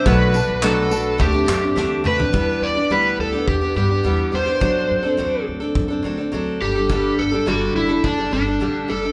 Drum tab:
TB |--x---x---x-----|----------------|----------------|----------------|
CP |----x-----x-----|----------------|----------------|----------------|
SD |------------o---|----------------|----------------|----------------|
T2 |--------------o-|----------------|----------------|----------------|
FT |---------------o|----------------|----------------|----------------|
BD |o-------o-------|o-------o-------|o-------o-------|o-------o-------|